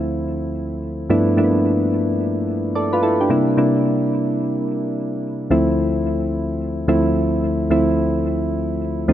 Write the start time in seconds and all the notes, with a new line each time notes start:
Already playing: D2 F3 A3 C4 E4
1.10 G2 F3 A3 B3 D4 E4
1.37 G2 F3 A3 A#3 D4 E4
1.44 B3
2.75 A4 D5
2.93 F4 B4
3.03 E4 A4
3.21 D4 G4
3.30 C3 G3 A#3 D4 E4
3.57 C3 G3 A#3 D4 E4
5.50 D2 F3 A3 C4 E4
6.88 D2 F3 A3 C4 E4
7.70 D2 F3 A3 C4 E4
9.08 D2 F3 A3 C4 D#4